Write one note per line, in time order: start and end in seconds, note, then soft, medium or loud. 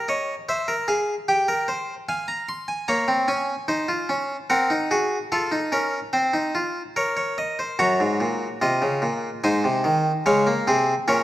0.08 0.33 C#5 medium
0.08 0.33 D#5 medium
0.49 0.68 C5 medium
0.49 0.73 E5 medium
0.68 0.87 A#4 medium
0.88 1.13 G#4 medium
0.88 1.13 F5 medium
1.28 1.48 G4 medium
1.28 2.06 G5 medium
1.48 1.68 A#4 medium
1.68 1.93 C5 medium
2.09 2.86 F5 medium
2.09 2.28 G#5 medium
2.28 2.48 A#5 medium
2.49 2.68 C6 medium
2.68 2.88 G#5 medium
2.88 3.08 A#3 medium
2.88 3.66 C#5 medium
2.88 3.13 A#5 medium
3.08 3.28 C4 medium
3.28 3.53 C#4 medium
3.28 4.47 G#5 medium
3.68 3.88 D#4 medium
3.68 4.48 C5 medium
3.88 4.09 F4 medium
4.09 4.35 C#4 medium
4.50 4.70 C4 medium
4.50 4.75 A#4 medium
4.50 5.29 F#5 medium
4.70 4.90 D#4 medium
4.91 5.16 F#4 medium
4.91 5.16 G#4 medium
5.32 5.52 F4 medium
5.32 5.57 A4 medium
5.32 7.76 F5 medium
5.52 5.72 D#4 medium
5.72 5.98 C#4 medium
5.72 5.98 A#4 medium
6.13 6.33 C4 medium
6.13 6.93 C5 medium
6.33 6.54 D#4 medium
6.55 6.81 F4 medium
6.96 7.77 A#4 medium
6.96 7.16 C#5 medium
7.17 7.37 C#5 medium
7.38 7.58 D#5 medium
7.59 7.79 C5 medium
7.79 7.99 F#2 medium
7.79 8.59 F#4 medium
7.79 8.59 C#5 medium
7.79 9.40 A#5 medium
8.00 8.20 G#2 medium
8.20 8.46 A#2 medium
8.62 8.82 C3 medium
8.62 9.41 F4 medium
8.62 9.41 D#5 medium
8.82 9.02 C#3 medium
9.02 9.28 A#2 medium
9.44 9.64 G#2 medium
9.44 10.24 D#4 medium
9.44 10.23 C5 medium
9.44 10.23 G#5 medium
9.64 9.84 C3 medium
9.84 10.10 D#3 medium
10.26 10.51 C#3 medium
10.26 10.46 G#3 medium
10.26 10.51 C#5 medium
10.26 11.05 F5 medium
10.47 10.66 A#3 medium
10.67 10.92 C3 medium
10.67 10.93 C4 medium
10.67 10.92 G#4 medium
11.08 11.23 A#2 medium
11.08 11.23 C#4 medium
11.08 11.23 A#4 medium
11.08 11.23 C#5 medium